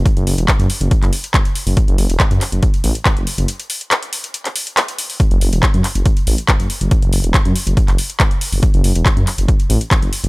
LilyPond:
<<
  \new Staff \with { instrumentName = "Detuned saw bass" } { \clef bass \time 4/4 \key fis \minor \tempo 4 = 140 r16 fis,,16 fis,,16 e,,16 r16 fis,16 r16 fis,,16 r16 fis,,16 r4 r16 fis,,16 | r16 fis,,16 fis,,16 e,,16 r16 fis,16 r16 fis,,16 r8 a,,16 r8 fis,,16 r16 fis,,16 | r1 | r16 fis,,16 fis,,16 e,,16 r16 fis,16 r16 fis,,16 r8 a,,16 r8 fis,,16 r16 fis,,16 |
r16 fis,,16 fis,,16 e,,16 r16 fis,16 r16 fis,,16 r16 fis,,16 r4 r16 fis,,16 | r16 fis,,16 fis,,16 e,,16 r16 fis,16 r16 fis,,16 r8 a,,16 r8 fis,,16 r16 fis,,16 | }
  \new DrumStaff \with { instrumentName = "Drums" } \drummode { \time 4/4 <hh bd>16 hh16 hho16 hh16 <hc hh bd>16 hh16 hho16 hh16 <hh bd>16 <hc hh>16 hho16 hh16 <hc hh bd>16 hh16 hho16 hho16 | <hh bd>16 hh16 hho16 hh16 <hc hh bd>16 hh16 <hc hho>16 hh16 <hh bd>16 hh16 hho16 hh16 <hc hh bd>16 hh16 hho16 hh16 | hh16 hh16 hho16 hh16 <hc hh>16 hh16 hho16 hh16 hh16 <hc hh>16 hho16 hh16 <hc hh>16 hh16 hho16 hho16 | <hh bd>16 hh16 hho16 hh16 <hc hh bd>16 hh16 <hc hho>16 hh16 <hh bd>16 hh16 hho16 hh16 <hc hh bd>16 hh16 hho16 hh16 |
<hh bd>16 hh16 hho16 hh16 <hc hh bd>16 hh16 hho16 hh16 <hh bd>16 <hc hh>16 hho16 hh16 <hc hh bd>16 hh16 hho16 hho16 | <hh bd>16 hh16 hho16 hh16 <hc hh bd>16 hh16 <hc hho>16 hh16 <hh bd>16 hh16 hho16 hh16 <hc hh bd>16 hh16 hho16 hh16 | }
>>